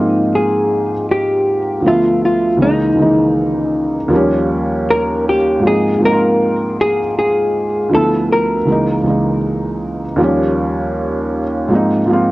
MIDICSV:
0, 0, Header, 1, 3, 480
1, 0, Start_track
1, 0, Key_signature, -4, "major"
1, 0, Tempo, 759494
1, 1639, Time_signature, 4, 2, 24, 8
1, 7783, End_track
2, 0, Start_track
2, 0, Title_t, "Hollow-body jazz guitar"
2, 0, Program_c, 0, 26
2, 0, Note_on_c, 0, 63, 75
2, 223, Note_off_c, 0, 63, 0
2, 223, Note_on_c, 0, 68, 80
2, 666, Note_off_c, 0, 68, 0
2, 704, Note_on_c, 0, 67, 91
2, 1146, Note_off_c, 0, 67, 0
2, 1186, Note_on_c, 0, 65, 84
2, 1415, Note_off_c, 0, 65, 0
2, 1422, Note_on_c, 0, 65, 83
2, 1635, Note_off_c, 0, 65, 0
2, 1655, Note_on_c, 0, 63, 90
2, 3100, Note_on_c, 0, 70, 97
2, 3130, Note_off_c, 0, 63, 0
2, 3336, Note_off_c, 0, 70, 0
2, 3344, Note_on_c, 0, 67, 89
2, 3578, Note_off_c, 0, 67, 0
2, 3584, Note_on_c, 0, 68, 99
2, 3818, Note_off_c, 0, 68, 0
2, 3825, Note_on_c, 0, 70, 102
2, 4301, Note_off_c, 0, 70, 0
2, 4304, Note_on_c, 0, 68, 98
2, 4534, Note_off_c, 0, 68, 0
2, 4542, Note_on_c, 0, 68, 97
2, 5019, Note_off_c, 0, 68, 0
2, 5022, Note_on_c, 0, 69, 92
2, 5257, Note_off_c, 0, 69, 0
2, 5261, Note_on_c, 0, 70, 88
2, 5945, Note_off_c, 0, 70, 0
2, 7783, End_track
3, 0, Start_track
3, 0, Title_t, "Felt piano"
3, 0, Program_c, 1, 0
3, 0, Control_c, 1, 64, 127
3, 0, Note_on_c, 1, 44, 71
3, 0, Note_on_c, 1, 53, 63
3, 0, Note_on_c, 1, 58, 65
3, 0, Note_on_c, 1, 60, 65
3, 0, Note_on_c, 1, 63, 71
3, 0, Note_on_c, 1, 65, 72
3, 572, Note_off_c, 1, 44, 0
3, 577, Note_off_c, 1, 53, 0
3, 582, Note_off_c, 1, 58, 0
3, 588, Note_off_c, 1, 60, 0
3, 594, Note_off_c, 1, 65, 0
3, 1141, Note_on_c, 1, 38, 67
3, 1152, Note_on_c, 1, 53, 66
3, 1164, Note_on_c, 1, 57, 66
3, 1166, Control_c, 1, 64, 0
3, 1169, Note_off_c, 1, 63, 0
3, 1174, Note_on_c, 1, 59, 69
3, 1187, Note_on_c, 1, 76, 81
3, 1262, Control_c, 1, 64, 127
3, 1552, Note_off_c, 1, 38, 0
3, 1557, Note_off_c, 1, 53, 0
3, 1564, Note_off_c, 1, 57, 0
3, 1568, Note_off_c, 1, 59, 0
3, 1575, Note_off_c, 1, 76, 0
3, 1621, Note_on_c, 1, 37, 64
3, 1633, Note_on_c, 1, 52, 59
3, 1645, Control_c, 1, 64, 0
3, 1645, Note_on_c, 1, 56, 60
3, 1656, Note_on_c, 1, 58, 60
3, 1666, Note_on_c, 1, 63, 73
3, 1751, Control_c, 1, 64, 127
3, 1796, Note_off_c, 1, 37, 0
3, 1802, Note_off_c, 1, 52, 0
3, 1808, Note_off_c, 1, 56, 0
3, 1814, Note_off_c, 1, 58, 0
3, 1819, Note_off_c, 1, 63, 0
3, 1864, Note_on_c, 1, 37, 70
3, 1874, Note_on_c, 1, 51, 49
3, 1886, Note_on_c, 1, 56, 63
3, 1898, Note_on_c, 1, 58, 62
3, 1908, Note_on_c, 1, 63, 80
3, 1917, Note_on_c, 1, 52, 61
3, 1925, Note_off_c, 1, 51, 0
3, 2491, Note_off_c, 1, 37, 0
3, 2502, Note_off_c, 1, 56, 0
3, 2508, Note_off_c, 1, 58, 0
3, 2513, Note_off_c, 1, 63, 0
3, 2518, Note_off_c, 1, 52, 0
3, 2580, Note_on_c, 1, 39, 92
3, 2591, Note_on_c, 1, 53, 85
3, 2603, Note_on_c, 1, 55, 80
3, 2606, Control_c, 1, 64, 0
3, 2613, Note_on_c, 1, 58, 86
3, 2625, Note_on_c, 1, 61, 101
3, 2706, Control_c, 1, 64, 127
3, 3366, Note_off_c, 1, 39, 0
3, 3372, Note_off_c, 1, 53, 0
3, 3378, Note_off_c, 1, 55, 0
3, 3383, Note_off_c, 1, 58, 0
3, 3389, Note_off_c, 1, 61, 0
3, 3536, Note_on_c, 1, 44, 71
3, 3550, Note_on_c, 1, 53, 59
3, 3559, Note_on_c, 1, 58, 60
3, 3566, Control_c, 1, 64, 0
3, 3572, Note_on_c, 1, 60, 60
3, 3582, Note_on_c, 1, 63, 73
3, 3693, Control_c, 1, 64, 127
3, 3714, Note_off_c, 1, 44, 0
3, 3721, Note_off_c, 1, 53, 0
3, 3725, Note_off_c, 1, 58, 0
3, 3732, Note_off_c, 1, 60, 0
3, 3737, Note_off_c, 1, 63, 0
3, 3783, Note_on_c, 1, 44, 69
3, 3793, Note_on_c, 1, 53, 64
3, 3806, Note_on_c, 1, 58, 63
3, 3815, Note_on_c, 1, 60, 66
3, 3828, Note_on_c, 1, 63, 61
3, 3862, Note_off_c, 1, 63, 0
3, 3870, Note_on_c, 1, 65, 82
3, 4411, Note_off_c, 1, 44, 0
3, 4416, Note_off_c, 1, 53, 0
3, 4422, Note_off_c, 1, 58, 0
3, 4427, Note_off_c, 1, 60, 0
3, 4454, Note_off_c, 1, 65, 0
3, 4987, Note_on_c, 1, 38, 74
3, 4999, Note_on_c, 1, 53, 63
3, 5008, Control_c, 1, 64, 0
3, 5011, Note_on_c, 1, 57, 64
3, 5022, Note_on_c, 1, 59, 67
3, 5033, Note_on_c, 1, 64, 80
3, 5115, Control_c, 1, 64, 127
3, 5395, Note_off_c, 1, 38, 0
3, 5401, Note_off_c, 1, 53, 0
3, 5407, Note_off_c, 1, 57, 0
3, 5412, Note_off_c, 1, 59, 0
3, 5418, Note_off_c, 1, 64, 0
3, 5465, Note_on_c, 1, 37, 65
3, 5477, Note_on_c, 1, 52, 64
3, 5487, Control_c, 1, 64, 0
3, 5487, Note_on_c, 1, 56, 61
3, 5499, Note_on_c, 1, 58, 59
3, 5510, Note_on_c, 1, 63, 73
3, 5587, Control_c, 1, 64, 127
3, 5638, Note_off_c, 1, 37, 0
3, 5644, Note_off_c, 1, 52, 0
3, 5649, Note_off_c, 1, 56, 0
3, 5655, Note_off_c, 1, 58, 0
3, 5661, Note_off_c, 1, 63, 0
3, 5703, Note_on_c, 1, 37, 67
3, 5714, Note_on_c, 1, 52, 61
3, 5725, Note_on_c, 1, 56, 65
3, 5736, Note_on_c, 1, 58, 62
3, 5748, Note_on_c, 1, 63, 72
3, 6331, Note_off_c, 1, 37, 0
3, 6336, Note_off_c, 1, 52, 0
3, 6342, Note_off_c, 1, 56, 0
3, 6347, Note_off_c, 1, 58, 0
3, 6353, Note_off_c, 1, 63, 0
3, 6422, Note_on_c, 1, 39, 90
3, 6433, Note_on_c, 1, 53, 82
3, 6445, Note_on_c, 1, 55, 83
3, 6448, Control_c, 1, 64, 0
3, 6456, Note_on_c, 1, 58, 85
3, 6468, Note_on_c, 1, 61, 99
3, 6571, Control_c, 1, 64, 127
3, 7207, Note_off_c, 1, 39, 0
3, 7213, Note_off_c, 1, 53, 0
3, 7219, Note_off_c, 1, 55, 0
3, 7225, Note_off_c, 1, 58, 0
3, 7230, Note_off_c, 1, 61, 0
3, 7383, Note_on_c, 1, 44, 78
3, 7394, Note_on_c, 1, 53, 70
3, 7404, Note_on_c, 1, 58, 72
3, 7407, Control_c, 1, 64, 0
3, 7416, Note_on_c, 1, 60, 74
3, 7426, Note_on_c, 1, 63, 91
3, 7507, Control_c, 1, 64, 127
3, 7557, Note_off_c, 1, 44, 0
3, 7563, Note_off_c, 1, 53, 0
3, 7568, Note_off_c, 1, 58, 0
3, 7574, Note_off_c, 1, 60, 0
3, 7579, Note_off_c, 1, 63, 0
3, 7619, Note_on_c, 1, 44, 77
3, 7630, Note_on_c, 1, 53, 75
3, 7642, Note_on_c, 1, 58, 74
3, 7654, Note_on_c, 1, 60, 71
3, 7666, Note_on_c, 1, 65, 90
3, 7783, Note_off_c, 1, 44, 0
3, 7783, Note_off_c, 1, 53, 0
3, 7783, Note_off_c, 1, 58, 0
3, 7783, Note_off_c, 1, 60, 0
3, 7783, Note_off_c, 1, 65, 0
3, 7783, End_track
0, 0, End_of_file